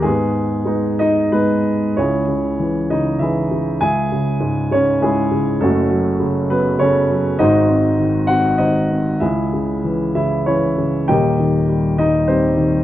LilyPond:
<<
  \new Staff \with { instrumentName = "Grand piano" } { \time 3/4 \key gis \minor \tempo 4 = 98 <b gis'>4. <dis' dis''>8 b'4 | \key cis \minor <cis' e' gis' cis''>4. <dis' dis''>8 <e' gis' e''>4 | <gis' e'' gis''>4. <cis' cis''>8 <gis e' gis'>4 | <a cis' fis' a'>4. <b b'>8 <cis' a' cis''>4 |
<dis' fis' bis' dis''>4. <fis' fis''>8 <dis' bis' dis''>4 | <e' gis' e''>4. <e' e''>8 <cis' e' cis''>4 | <g' ais' dis'' g''>4. <dis' dis''>8 <bis g' bis'>4 | }
  \new Staff \with { instrumentName = "Grand piano" } { \clef bass \time 3/4 \key gis \minor gis,4 <gis b dis'>4 <gis b dis'>4 | \key cis \minor cis,8 cis8 e8 cis8 e8 cis8 | cis,8 cis8 gis,8 cis8 gis,8 cis8 | <fis,, fis,>8 fis8 cis8 fis8 cis8 fis8 |
<gis,, gis,>8 bis8 dis8 bis8 dis8 bis8 | cis,8 cis8 e8 cis8 e8 cis8 | <dis,, dis,>8 dis8 g8 dis8 g8 dis8 | }
>>